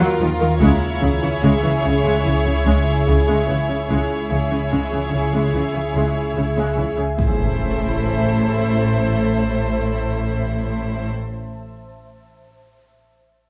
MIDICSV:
0, 0, Header, 1, 10, 480
1, 0, Start_track
1, 0, Tempo, 821918
1, 357, Time_signature, 4, 2, 24, 8
1, 7882, End_track
2, 0, Start_track
2, 0, Title_t, "Ambient pad"
2, 0, Program_c, 0, 92
2, 0, Note_on_c, 0, 65, 51
2, 0, Note_on_c, 0, 77, 48
2, 0, Note_on_c, 0, 82, 54
2, 337, Note_off_c, 0, 65, 0
2, 337, Note_off_c, 0, 77, 0
2, 337, Note_off_c, 0, 82, 0
2, 352, Note_on_c, 0, 80, 48
2, 354, Note_on_c, 0, 68, 49
2, 355, Note_on_c, 0, 76, 49
2, 2273, Note_off_c, 0, 80, 0
2, 2274, Note_off_c, 0, 76, 0
2, 2276, Note_off_c, 0, 68, 0
2, 2280, Note_on_c, 0, 80, 43
2, 2281, Note_on_c, 0, 76, 43
2, 2282, Note_on_c, 0, 68, 41
2, 4175, Note_off_c, 0, 80, 0
2, 4176, Note_off_c, 0, 76, 0
2, 4177, Note_off_c, 0, 68, 0
2, 4196, Note_on_c, 0, 72, 49
2, 4197, Note_on_c, 0, 81, 43
2, 4199, Note_on_c, 0, 76, 45
2, 6485, Note_off_c, 0, 72, 0
2, 6486, Note_off_c, 0, 81, 0
2, 6488, Note_off_c, 0, 76, 0
2, 7882, End_track
3, 0, Start_track
3, 0, Title_t, "Violin section"
3, 0, Program_c, 1, 48
3, 0, Note_on_c, 1, 70, 55
3, 334, Note_off_c, 1, 70, 0
3, 357, Note_on_c, 1, 73, 49
3, 2254, Note_off_c, 1, 73, 0
3, 2278, Note_on_c, 1, 73, 31
3, 4058, Note_off_c, 1, 73, 0
3, 4197, Note_on_c, 1, 72, 39
3, 6486, Note_off_c, 1, 72, 0
3, 7882, End_track
4, 0, Start_track
4, 0, Title_t, "Violin section"
4, 0, Program_c, 2, 48
4, 0, Note_on_c, 2, 65, 58
4, 335, Note_off_c, 2, 65, 0
4, 355, Note_on_c, 2, 64, 45
4, 2253, Note_off_c, 2, 64, 0
4, 2276, Note_on_c, 2, 64, 34
4, 4057, Note_off_c, 2, 64, 0
4, 4200, Note_on_c, 2, 64, 43
4, 6489, Note_off_c, 2, 64, 0
4, 7882, End_track
5, 0, Start_track
5, 0, Title_t, "Viola section"
5, 0, Program_c, 3, 48
5, 0, Note_on_c, 3, 54, 59
5, 109, Note_off_c, 3, 54, 0
5, 123, Note_on_c, 3, 53, 34
5, 170, Note_off_c, 3, 53, 0
5, 232, Note_on_c, 3, 51, 46
5, 279, Note_off_c, 3, 51, 0
5, 354, Note_on_c, 3, 56, 55
5, 467, Note_off_c, 3, 56, 0
5, 597, Note_on_c, 3, 49, 35
5, 644, Note_off_c, 3, 49, 0
5, 712, Note_on_c, 3, 52, 35
5, 759, Note_off_c, 3, 52, 0
5, 835, Note_on_c, 3, 56, 45
5, 948, Note_off_c, 3, 56, 0
5, 954, Note_on_c, 3, 52, 34
5, 1000, Note_off_c, 3, 52, 0
5, 1070, Note_on_c, 3, 49, 39
5, 1117, Note_off_c, 3, 49, 0
5, 1191, Note_on_c, 3, 56, 40
5, 1305, Note_off_c, 3, 56, 0
5, 1306, Note_on_c, 3, 52, 29
5, 1352, Note_off_c, 3, 52, 0
5, 1436, Note_on_c, 3, 49, 32
5, 1483, Note_off_c, 3, 49, 0
5, 1549, Note_on_c, 3, 56, 46
5, 1664, Note_off_c, 3, 56, 0
5, 1793, Note_on_c, 3, 49, 26
5, 1840, Note_off_c, 3, 49, 0
5, 1911, Note_on_c, 3, 56, 38
5, 2026, Note_off_c, 3, 56, 0
5, 2030, Note_on_c, 3, 52, 23
5, 2077, Note_off_c, 3, 52, 0
5, 2151, Note_on_c, 3, 49, 28
5, 2198, Note_off_c, 3, 49, 0
5, 2269, Note_on_c, 3, 56, 35
5, 2384, Note_off_c, 3, 56, 0
5, 2506, Note_on_c, 3, 49, 25
5, 2552, Note_off_c, 3, 49, 0
5, 2629, Note_on_c, 3, 52, 23
5, 2676, Note_off_c, 3, 52, 0
5, 2751, Note_on_c, 3, 56, 31
5, 2865, Note_off_c, 3, 56, 0
5, 2871, Note_on_c, 3, 52, 24
5, 2918, Note_off_c, 3, 52, 0
5, 2991, Note_on_c, 3, 49, 22
5, 3038, Note_off_c, 3, 49, 0
5, 3113, Note_on_c, 3, 56, 34
5, 3227, Note_off_c, 3, 56, 0
5, 3232, Note_on_c, 3, 52, 23
5, 3279, Note_off_c, 3, 52, 0
5, 3349, Note_on_c, 3, 49, 26
5, 3396, Note_off_c, 3, 49, 0
5, 3476, Note_on_c, 3, 56, 33
5, 3588, Note_off_c, 3, 56, 0
5, 3716, Note_on_c, 3, 49, 25
5, 3762, Note_off_c, 3, 49, 0
5, 3832, Note_on_c, 3, 56, 30
5, 3946, Note_off_c, 3, 56, 0
5, 3947, Note_on_c, 3, 52, 21
5, 3993, Note_off_c, 3, 52, 0
5, 4069, Note_on_c, 3, 49, 27
5, 4115, Note_off_c, 3, 49, 0
5, 4185, Note_on_c, 3, 57, 42
5, 6475, Note_off_c, 3, 57, 0
5, 7882, End_track
6, 0, Start_track
6, 0, Title_t, "Cello section"
6, 0, Program_c, 4, 48
6, 117, Note_on_c, 4, 51, 41
6, 164, Note_off_c, 4, 51, 0
6, 235, Note_on_c, 4, 51, 38
6, 282, Note_off_c, 4, 51, 0
6, 354, Note_on_c, 4, 49, 52
6, 401, Note_off_c, 4, 49, 0
6, 597, Note_on_c, 4, 49, 35
6, 644, Note_off_c, 4, 49, 0
6, 714, Note_on_c, 4, 49, 34
6, 761, Note_off_c, 4, 49, 0
6, 831, Note_on_c, 4, 49, 48
6, 878, Note_off_c, 4, 49, 0
6, 953, Note_on_c, 4, 49, 36
6, 1000, Note_off_c, 4, 49, 0
6, 1075, Note_on_c, 4, 49, 32
6, 1121, Note_off_c, 4, 49, 0
6, 1191, Note_on_c, 4, 49, 44
6, 1238, Note_off_c, 4, 49, 0
6, 1312, Note_on_c, 4, 49, 26
6, 1359, Note_off_c, 4, 49, 0
6, 1432, Note_on_c, 4, 49, 29
6, 1479, Note_off_c, 4, 49, 0
6, 1552, Note_on_c, 4, 49, 40
6, 1599, Note_off_c, 4, 49, 0
6, 1796, Note_on_c, 4, 49, 28
6, 1843, Note_off_c, 4, 49, 0
6, 1911, Note_on_c, 4, 49, 39
6, 1958, Note_off_c, 4, 49, 0
6, 2036, Note_on_c, 4, 49, 26
6, 2083, Note_off_c, 4, 49, 0
6, 2155, Note_on_c, 4, 49, 25
6, 2201, Note_off_c, 4, 49, 0
6, 2276, Note_on_c, 4, 49, 35
6, 2322, Note_off_c, 4, 49, 0
6, 2516, Note_on_c, 4, 49, 26
6, 2563, Note_off_c, 4, 49, 0
6, 2639, Note_on_c, 4, 49, 23
6, 2686, Note_off_c, 4, 49, 0
6, 2758, Note_on_c, 4, 49, 31
6, 2804, Note_off_c, 4, 49, 0
6, 2878, Note_on_c, 4, 49, 23
6, 2925, Note_off_c, 4, 49, 0
6, 2999, Note_on_c, 4, 49, 21
6, 3046, Note_off_c, 4, 49, 0
6, 3118, Note_on_c, 4, 49, 33
6, 3164, Note_off_c, 4, 49, 0
6, 3237, Note_on_c, 4, 49, 22
6, 3283, Note_off_c, 4, 49, 0
6, 3360, Note_on_c, 4, 49, 22
6, 3407, Note_off_c, 4, 49, 0
6, 3473, Note_on_c, 4, 49, 32
6, 3520, Note_off_c, 4, 49, 0
6, 3717, Note_on_c, 4, 49, 20
6, 3764, Note_off_c, 4, 49, 0
6, 3835, Note_on_c, 4, 49, 34
6, 3882, Note_off_c, 4, 49, 0
6, 3956, Note_on_c, 4, 49, 19
6, 4003, Note_off_c, 4, 49, 0
6, 4076, Note_on_c, 4, 49, 20
6, 4123, Note_off_c, 4, 49, 0
6, 4196, Note_on_c, 4, 45, 42
6, 6485, Note_off_c, 4, 45, 0
6, 7882, End_track
7, 0, Start_track
7, 0, Title_t, "Cello section"
7, 0, Program_c, 5, 48
7, 120, Note_on_c, 5, 51, 35
7, 263, Note_off_c, 5, 51, 0
7, 358, Note_on_c, 5, 49, 51
7, 502, Note_off_c, 5, 49, 0
7, 599, Note_on_c, 5, 49, 40
7, 742, Note_off_c, 5, 49, 0
7, 838, Note_on_c, 5, 49, 37
7, 982, Note_off_c, 5, 49, 0
7, 1079, Note_on_c, 5, 49, 50
7, 1223, Note_off_c, 5, 49, 0
7, 1317, Note_on_c, 5, 49, 32
7, 1461, Note_off_c, 5, 49, 0
7, 1559, Note_on_c, 5, 61, 30
7, 1703, Note_off_c, 5, 61, 0
7, 1798, Note_on_c, 5, 49, 44
7, 1942, Note_off_c, 5, 49, 0
7, 2035, Note_on_c, 5, 49, 24
7, 2180, Note_off_c, 5, 49, 0
7, 2277, Note_on_c, 5, 49, 34
7, 2421, Note_off_c, 5, 49, 0
7, 2518, Note_on_c, 5, 49, 28
7, 2662, Note_off_c, 5, 49, 0
7, 2759, Note_on_c, 5, 49, 28
7, 2902, Note_off_c, 5, 49, 0
7, 2998, Note_on_c, 5, 49, 34
7, 3142, Note_off_c, 5, 49, 0
7, 3237, Note_on_c, 5, 49, 22
7, 3381, Note_off_c, 5, 49, 0
7, 3477, Note_on_c, 5, 61, 22
7, 3621, Note_off_c, 5, 61, 0
7, 3715, Note_on_c, 5, 49, 32
7, 3860, Note_off_c, 5, 49, 0
7, 3958, Note_on_c, 5, 49, 19
7, 4102, Note_off_c, 5, 49, 0
7, 7882, End_track
8, 0, Start_track
8, 0, Title_t, "Double bass section"
8, 0, Program_c, 6, 48
8, 118, Note_on_c, 6, 39, 39
8, 165, Note_off_c, 6, 39, 0
8, 356, Note_on_c, 6, 37, 61
8, 403, Note_off_c, 6, 37, 0
8, 597, Note_on_c, 6, 37, 34
8, 644, Note_off_c, 6, 37, 0
8, 838, Note_on_c, 6, 37, 42
8, 885, Note_off_c, 6, 37, 0
8, 1078, Note_on_c, 6, 37, 33
8, 1125, Note_off_c, 6, 37, 0
8, 1317, Note_on_c, 6, 37, 27
8, 1364, Note_off_c, 6, 37, 0
8, 1558, Note_on_c, 6, 37, 40
8, 1605, Note_off_c, 6, 37, 0
8, 1798, Note_on_c, 6, 37, 33
8, 1845, Note_off_c, 6, 37, 0
8, 2040, Note_on_c, 6, 37, 26
8, 2086, Note_off_c, 6, 37, 0
8, 2277, Note_on_c, 6, 37, 39
8, 2323, Note_off_c, 6, 37, 0
8, 2518, Note_on_c, 6, 37, 21
8, 2565, Note_off_c, 6, 37, 0
8, 2759, Note_on_c, 6, 37, 29
8, 2806, Note_off_c, 6, 37, 0
8, 2999, Note_on_c, 6, 37, 24
8, 3046, Note_off_c, 6, 37, 0
8, 3237, Note_on_c, 6, 37, 21
8, 3283, Note_off_c, 6, 37, 0
8, 3476, Note_on_c, 6, 37, 29
8, 3522, Note_off_c, 6, 37, 0
8, 3716, Note_on_c, 6, 37, 22
8, 3763, Note_off_c, 6, 37, 0
8, 3956, Note_on_c, 6, 37, 21
8, 4003, Note_off_c, 6, 37, 0
8, 4199, Note_on_c, 6, 33, 44
8, 6489, Note_off_c, 6, 33, 0
8, 7882, End_track
9, 0, Start_track
9, 0, Title_t, "Synth drone"
9, 0, Program_c, 7, 95
9, 0, Note_on_c, 7, 39, 66
9, 333, Note_off_c, 7, 39, 0
9, 358, Note_on_c, 7, 37, 65
9, 2275, Note_off_c, 7, 37, 0
9, 2283, Note_on_c, 7, 37, 52
9, 4177, Note_off_c, 7, 37, 0
9, 4205, Note_on_c, 7, 33, 52
9, 6494, Note_off_c, 7, 33, 0
9, 7882, End_track
10, 0, Start_track
10, 0, Title_t, "Impact"
10, 0, Program_c, 8, 103
10, 4197, Note_on_c, 8, 60, 39
10, 6510, Note_off_c, 8, 60, 0
10, 7882, End_track
0, 0, End_of_file